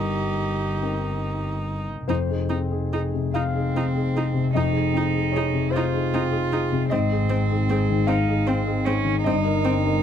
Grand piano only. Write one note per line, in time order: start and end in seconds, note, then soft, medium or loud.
0.00 0.78 G2 soft
0.00 0.81 A#4 soft
0.82 2.05 C4 soft
0.82 2.05 D#4 soft
0.82 2.06 A#4 soft
2.08 2.29 F2 soft
2.08 3.30 C5 medium
2.29 2.49 D#4 soft
2.29 2.49 G#4 soft
2.50 2.84 C4 soft
2.71 2.90 D#4 soft
2.71 2.91 G#4 soft
2.93 3.12 D#4 soft
2.93 3.12 G#4 soft
3.14 3.79 C3 soft
3.34 4.50 F5 medium
3.54 3.73 D#4 soft
3.54 3.73 G#4 soft
3.75 4.07 C4 soft
3.95 4.13 D#4 soft
3.95 4.13 G#4 soft
4.14 4.32 D#4 soft
4.14 4.32 G#4 soft
4.34 4.66 C3 soft
4.53 4.74 F2 medium
4.53 5.29 D#5 medium
4.73 4.91 D#4 soft
4.73 4.91 G#4 soft
4.94 5.25 C4 soft
5.14 5.31 D#4 soft
5.14 5.31 G#4 soft
5.32 5.51 D#4 soft
5.32 5.51 G#4 soft
5.32 5.69 C#5 medium
5.53 6.16 C3 soft
5.71 6.85 C5 medium
5.93 6.10 D#4 soft
5.93 6.10 G#4 soft
6.13 6.43 C4 soft
6.32 6.49 D#4 soft
6.32 6.49 G#4 soft
6.52 6.69 D#4 soft
6.52 6.69 G#4 soft
6.72 6.91 C3 soft
6.90 7.10 G#2 medium
6.90 8.04 D#5 medium
7.12 7.29 D#4 soft
7.12 7.29 G#4 soft
7.30 7.61 C4 soft
7.51 7.68 D#4 soft
7.51 7.68 G#4 soft
7.70 7.87 D#4 soft
7.70 7.87 G#4 medium
7.90 8.51 D#3 soft
8.07 9.20 F5 medium
8.28 8.45 D#4 soft
8.28 8.46 G#4 soft
8.48 8.78 C4 soft
8.66 8.84 D#4 soft
8.66 8.84 G#4 soft
8.87 9.04 D#4 soft
8.87 9.04 G#4 soft
9.05 9.24 D#3 medium
9.24 9.44 G2 medium
9.24 10.03 D#5 medium
9.45 9.62 D#4 soft
9.45 9.62 A#4 medium
9.65 9.96 C4 medium
9.84 10.01 D#4 soft
9.84 10.02 A#4 soft